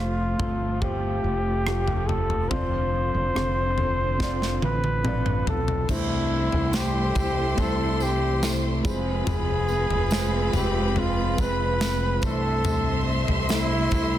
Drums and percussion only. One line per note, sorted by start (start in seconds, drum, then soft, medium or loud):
0.39 kick medium
0.39 floor tom medium
0.82 kick medium
0.82 floor tom medium
1.67 cross-stick medium
1.88 floor tom medium
2.09 floor tom medium
2.30 floor tom medium
2.51 kick medium
2.51 floor tom medium
3.36 cross-stick medium
3.78 floor tom medium
4.20 kick medium
4.20 snare soft
4.42 snare soft
4.62 high tom medium
4.84 high tom medium
5.05 mid tom medium
5.26 mid tom medium
5.47 floor tom medium
5.68 floor tom medium
5.89 kick loud
5.89 floor tom loud
5.89 crash medium
5.89 tambourine soft
6.52 floor tom medium
6.73 snare medium
6.73 tambourine medium
7.15 kick medium
7.15 floor tom medium
7.15 tambourine soft
7.58 kick medium
7.58 floor tom medium
7.58 tambourine soft
8.00 tambourine soft
8.43 snare loud
8.43 tambourine medium
8.85 kick loud
8.85 tambourine soft
9.27 floor tom loud
9.27 tambourine soft
9.69 tambourine soft
9.90 floor tom medium
10.11 snare medium
10.11 tambourine medium
10.53 floor tom medium
10.53 tambourine soft
10.96 floor tom medium
11.38 kick medium
11.38 tambourine soft
11.81 snare loud
11.81 tambourine medium
12.22 kick loud
12.22 tambourine soft
12.64 floor tom loud
12.64 tambourine soft
13.28 floor tom medium
13.49 snare medium
13.49 tambourine medium
13.91 kick medium
13.91 floor tom medium
13.91 tambourine soft